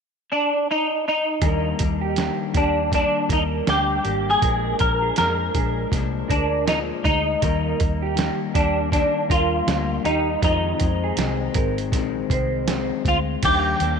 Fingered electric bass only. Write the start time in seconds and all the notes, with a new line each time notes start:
1.42 D#2
1.80 D#2
2.55 D#2
3.30 D#2
3.68 D2
4.05 G#1
4.42 A#1
4.81 A#1
5.19 F2
5.54 A#1
5.92 C2
6.30 D2
7.04 D2
7.43 D#2
7.80 D#2
8.55 D#2
9.30 D#2
9.67 D2
10.05 D#2
10.42 F2
10.81 F2
11.17 C2
11.55 G#1
11.92 A#1
12.30 C2
13.05 D2
13.43 D#2
13.80 D#2